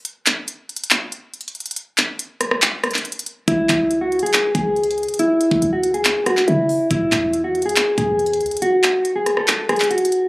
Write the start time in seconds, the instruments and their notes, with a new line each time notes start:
0.05 closed hi-hat
0.26 clap, closed hi-hat
0.48 closed hi-hat
0.69 closed hi-hat
0.76 closed hi-hat
0.84 closed hi-hat
0.91 clap, closed hi-hat
1.12 closed hi-hat
1.34 closed hi-hat
1.41 closed hi-hat
1.48 closed hi-hat
1.55 closed hi-hat
1.60 closed hi-hat
1.66 closed hi-hat
1.71 closed hi-hat
1.76 closed hi-hat
1.98 clap, closed hi-hat
2.19 closed hi-hat
2.41 cross-stick, closed hi-hat
2.51 cross-stick
2.62 clap, closed hi-hat
2.84 cross-stick, closed hi-hat
2.91 clap, closed hi-hat
2.98 closed hi-hat
3.05 closed hi-hat
3.12 closed hi-hat
3.19 closed hi-hat
3.26 closed hi-hat
3.48 808-style bass C#2, clean electric guitar E4, kick, closed hi-hat
3.69 808-style bass C#2, kick, clap, closed hi-hat
3.91 closed hi-hat
4.01 clean electric guitar F#4
4.12 closed hi-hat
4.19 clean electric guitar G#4, closed hi-hat
4.26 closed hi-hat
4.33 clap, closed hi-hat
4.55 808-style bass C#2, clean electric guitar G#4, kick, closed hi-hat
4.76 closed hi-hat
4.84 closed hi-hat
4.91 closed hi-hat
4.98 closed hi-hat
5.03 closed hi-hat
5.08 closed hi-hat
5.14 closed hi-hat
5.19 clean electric guitar E4, closed hi-hat
5.41 closed hi-hat
5.51 808-style bass C#2, kick
5.62 808-style bass C#2, closed hi-hat
5.73 clean electric guitar F#4
5.83 closed hi-hat
5.94 clean electric guitar G#4, closed hi-hat
6.05 clap, closed hi-hat
6.26 clean electric guitar F#4, cross-stick, closed hi-hat
6.37 clap
6.48 808-style bass C#3, clean electric guitar E4, closed hi-hat
6.69 open hi-hat
6.91 808-style bass A1, clean electric guitar E4, kick, closed hi-hat
7.12 808-style bass E2, kick, clap, closed hi-hat
7.33 closed hi-hat
7.44 clean electric guitar F#4
7.55 closed hi-hat
7.62 clean electric guitar G#4, closed hi-hat
7.69 closed hi-hat
7.76 clap, closed hi-hat
7.98 808-style bass E2, clean electric guitar G#4, kick, closed hi-hat
8.19 closed hi-hat
8.26 closed hi-hat
8.33 closed hi-hat
8.41 808-style bass C#2, closed hi-hat
8.46 closed hi-hat
8.51 closed hi-hat
8.57 closed hi-hat
8.62 clean electric guitar F#4, closed hi-hat
8.83 clap, closed hi-hat
9.05 closed hi-hat
9.16 clean electric guitar G#4
9.26 cross-stick, closed hi-hat
9.37 clean electric guitar A4, cross-stick
9.48 clap, closed hi-hat
9.69 clean electric guitar G#4, cross-stick, closed hi-hat
9.76 clap, closed hi-hat
9.84 closed hi-hat
9.91 clean electric guitar F#4, closed hi-hat
9.98 closed hi-hat
10.05 closed hi-hat
10.12 closed hi-hat